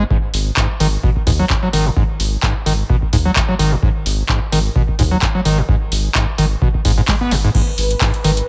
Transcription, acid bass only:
0.10 0.17 G#2 medium
0.57 0.67 G#2 medium
0.80 0.87 D#3 loud
1.03 1.10 B2 medium
1.27 1.31 G#2 medium
1.39 1.45 F#3 loud
1.50 1.54 F#2 medium
1.63 1.69 F#3 loud
1.73 1.87 D#3 loud
1.86 1.89 G#2 medium
1.97 2.03 G#2 medium
2.43 2.53 G#2 medium
2.66 2.73 D#3 loud
2.89 2.96 B2 medium
3.13 3.17 G#2 medium
3.25 3.31 F#3 loud
3.36 3.40 F#2 medium
3.49 3.54 F#3 loud
3.59 3.73 D#3 loud
3.72 3.75 G#2 medium
3.83 3.90 G#2 medium
4.29 4.40 G#2 medium
4.52 4.59 D#3 loud
4.76 4.83 B2 medium
4.99 5.03 G#2 loud
5.11 5.17 F#3 loud
5.22 5.26 F#2 medium
5.35 5.41 F#3 loud
5.45 5.60 D#3 loud
5.58 5.62 G#2 medium
5.69 5.76 G#2 medium
6.15 6.26 G#2 medium
6.38 6.45 D#3 loud
6.62 6.69 B2 medium
6.85 6.92 G#2 medium
6.98 7.01 G#2 loud
7.08 7.15 G#3 medium
7.21 7.33 B3 medium
7.32 7.36 G#2 medium
7.44 7.50 G#2 loud
7.55 7.62 G#2 medium
8.01 8.12 G#2 medium
8.24 8.31 D#3 loud

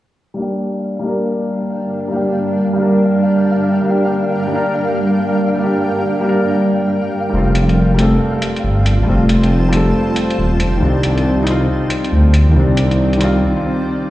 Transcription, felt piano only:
0.34 0.98 G3 medium
0.34 1.00 A#3 medium
0.39 1.02 D4 medium
0.39 1.03 G4 medium
0.99 2.07 G3 medium
0.99 2.09 A#3 medium
1.04 2.11 D4 medium
1.04 2.12 A#4 medium
2.08 2.72 G3 medium
2.08 2.74 A#3 medium
2.13 2.76 D4 medium
2.13 2.77 G4 medium
2.73 3.81 G3 medium
2.73 3.83 A#3 medium
2.78 3.85 D4 medium
2.78 3.86 A#4 medium
3.82 4.46 G3 medium
3.82 4.48 A#3 medium
3.87 4.50 D4 medium
3.87 4.51 G4 medium
4.47 5.54 G3 medium
4.47 5.57 A#3 medium
4.53 5.59 D4 medium
4.53 5.60 A#4 medium
5.56 6.19 G3 medium
5.56 6.22 A#3 medium
5.61 6.24 D4 medium
5.61 6.25 G4 medium
6.21 7.28 G3 medium
6.21 7.31 A#3 medium
6.26 7.32 D4 medium
6.26 7.34 A#4 medium
7.30 7.93 G3 medium
7.30 7.96 A3 medium
7.35 7.98 C4 medium
7.35 7.99 F4 medium
7.94 9.02 G3 medium
7.94 9.05 A3 medium
8.00 9.06 C4 medium
8.00 9.08 A4 medium
9.03 9.67 G3 medium
9.03 9.70 A3 medium
9.09 9.72 C4 medium
9.09 9.73 F4 medium
9.69 10.78 G3 medium
9.69 10.79 A3 medium
9.74 10.80 C4 medium
9.74 10.82 A4 medium
10.77 11.43 D#3 medium
10.77 11.44 G3 medium
10.82 11.45 C4 medium
10.82 11.47 D4 medium
11.42 12.52 G3 medium
11.42 12.51 D#4 medium
11.48 12.54 C4 medium
11.48 12.55 F4 loud
12.51 13.15 D#3 medium
12.51 13.17 G3 medium
12.57 13.19 C4 medium
12.57 13.21 D4 medium
13.16 13.40 D#3 medium
13.16 13.41 G3 medium
13.22 13.43 C4 medium
13.22 13.44 F4 loud

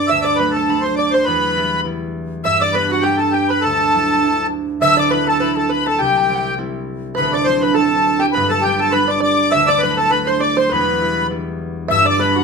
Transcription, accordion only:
0.08 0.26 E5 loud
0.22 0.37 D5 medium
0.36 0.53 B4 loud
0.51 0.84 A4 medium
0.81 0.95 C5 medium
0.96 1.12 D5 medium
1.11 1.25 C5 medium
1.24 1.81 B4 loud
2.45 2.62 E5 loud
2.61 2.75 D5 loud
2.74 2.91 B4 loud
2.90 3.04 F#4 medium
3.02 3.18 G4 loud
3.17 3.33 A4 medium
3.31 3.50 G4 medium
3.49 3.63 B4 medium
3.61 4.47 A4 loud
4.82 4.99 E5 loud
4.99 5.12 D5 loud
5.11 5.28 B4 loud
5.28 5.56 A4 medium
5.58 5.71 A4 medium
5.70 5.87 B4 medium
5.88 6.01 A4 medium
6.00 6.54 G4 medium
7.16 7.33 B4 loud
7.33 7.46 D5 medium
7.44 7.62 C5 loud
7.61 7.74 B4 medium
7.74 8.22 A4 medium
8.20 8.26 G4 medium
8.33 8.51 B4 loud
8.49 8.64 A4 medium
8.62 8.80 G4 loud
8.80 8.94 A4 medium
8.92 9.10 B4 loud
9.08 9.21 D5 medium
9.22 9.53 D5 medium
9.51 9.69 E5 loud
9.67 9.82 D5 loud
9.79 9.98 B4 loud
9.97 10.11 A4 medium
10.10 10.28 B4 loud
10.27 10.41 C5 medium
10.41 10.58 D5 medium
10.58 10.72 C5 loud
10.73 11.27 B4 loud
11.92 12.06 E5 loud
12.10 12.21 D5 loud
12.21 12.37 B4 loud
12.38 12.44 F#4 medium

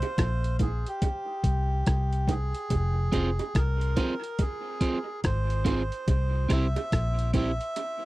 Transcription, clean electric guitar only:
3.12 3.29 C4 medium
3.12 3.29 F4 medium
3.12 3.29 G#4 medium
3.12 3.29 C5 medium
3.97 4.13 C4 medium
3.97 4.13 F4 medium
3.97 4.13 G#4 medium
3.97 4.13 C5 medium
4.81 4.97 C4 medium
4.81 4.97 F4 medium
4.81 4.97 G#4 medium
4.81 4.98 C5 medium
5.65 5.81 C4 medium
5.65 5.81 F4 medium
5.65 5.82 G#4 medium
5.65 5.82 C5 medium
6.49 6.65 C4 medium
6.49 6.66 E4 medium
6.49 6.66 G4 medium
6.49 6.66 C5 medium
7.34 7.50 C4 medium
7.34 7.50 E4 medium
7.34 7.51 G4 medium
7.34 7.51 C5 medium

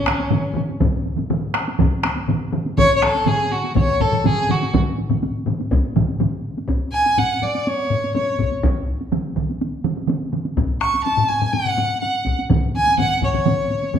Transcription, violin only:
0.00 0.58 C#4 medium
2.78 2.95 C#5 loud
2.96 3.04 C#5 medium
3.03 3.29 A4 medium
3.28 3.53 G#4 medium
3.52 3.76 F#4 medium
3.76 4.02 C#5 medium
4.01 4.20 A4 medium
4.20 4.27 A4 medium
4.26 4.52 G#4 medium
4.51 4.74 F#4 medium
6.92 7.20 G#5 medium
7.18 7.44 F#5 medium
7.43 7.69 D5 medium
7.67 8.15 C#5 medium
8.15 8.49 C#5 medium
10.81 11.04 C#6 medium
11.04 11.30 A5 medium
11.28 11.54 G#5 medium
11.53 12.01 F#5 medium
12.01 12.35 F#5 medium
12.76 12.98 G#5 medium
12.99 13.21 F#5 medium
13.24 13.99 C#5 medium

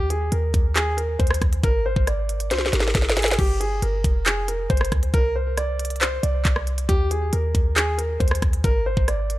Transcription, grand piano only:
0.10 0.30 G#4 medium
0.32 0.73 A#4 medium
0.76 0.95 G#4 medium
0.97 1.17 A#4 medium
1.19 1.39 C5 medium
1.64 1.83 A#4 loud
1.86 2.05 C5 medium
2.08 2.49 D5 medium
2.51 2.70 C5 medium
2.73 3.14 A#4 medium
3.17 3.36 G#4 medium
3.39 3.58 G4 loud
3.60 3.80 G#4 medium
3.83 4.24 A#4 medium
4.26 4.46 G#4 medium
4.48 4.68 A#4 medium
4.70 4.89 C5 medium
5.14 5.33 A#4 loud
5.36 5.55 C5 medium
5.58 5.99 D5 medium
6.01 6.21 C5 medium
6.23 6.85 D5 medium
6.89 7.08 G4 loud
7.11 7.30 G#4 medium
7.33 7.74 A#4 medium
7.76 7.96 G#4 medium
7.98 8.18 A#4 medium
8.20 8.39 C5 medium
8.65 8.84 A#4 loud
8.86 9.05 C5 medium
9.08 9.39 D5 medium

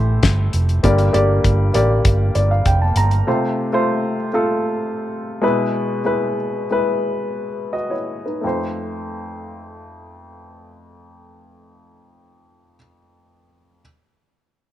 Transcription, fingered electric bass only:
0.00 0.18 A1 medium
0.23 0.48 G1 medium
0.54 0.78 F1 medium
0.84 1.09 G1 medium
1.14 1.39 G1 medium
1.45 1.69 G1 medium
1.75 2.00 A1 medium
2.05 2.30 G1 medium
2.36 2.60 G1 medium
2.66 2.91 F1 medium
2.96 3.21 G1 medium

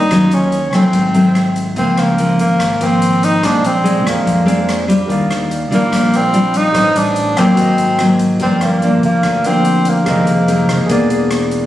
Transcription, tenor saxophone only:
0.00 0.35 D#4 loud
0.34 0.68 C#4 medium
0.70 0.76 C#4 medium
0.74 1.57 C4 loud
1.78 2.00 C4 medium
1.99 2.40 A#3 medium
2.41 2.84 A#3 medium
2.83 3.26 C4 medium
3.24 3.46 D#4 medium
3.45 3.68 D4 medium
3.66 4.07 C4 medium
4.08 4.86 A#3 medium
5.74 6.17 A#3 medium
6.16 6.58 C4 medium
6.56 6.98 D#4 loud
6.97 7.39 D4 medium
7.38 8.20 C4 loud
8.42 8.64 C4 medium
8.62 9.03 A#3 medium
9.05 9.48 A#3 medium
9.47 9.90 C4 medium
9.89 11.12 A#3 medium

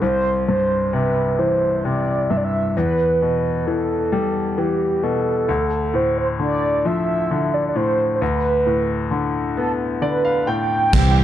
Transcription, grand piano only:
0.02 2.71 C2 soft
0.48 2.26 G2 soft
0.93 1.83 C3 soft
1.39 2.71 E3 soft
1.85 2.73 C3 soft
2.30 2.74 G2 soft
2.77 5.45 E2 soft
3.22 5.00 B2 soft
3.67 4.56 E3 soft
4.12 5.45 G3 soft
4.58 5.46 E3 soft
5.03 5.47 B2 soft
5.49 8.17 D2 medium
5.94 7.72 A2 soft
6.39 7.29 D3 soft
6.85 8.18 F3 soft
7.31 8.19 D3 soft
7.75 8.20 A2 soft
8.22 10.90 D2 soft
8.66 10.44 A2 soft
9.11 10.00 D3 soft
9.57 10.90 B3 soft
10.02 10.90 D3 soft
10.02 10.24 D5 soft
10.25 10.46 F5 soft
10.47 10.92 A2 soft
10.47 10.90 G5 soft
10.94 11.24 C4 medium

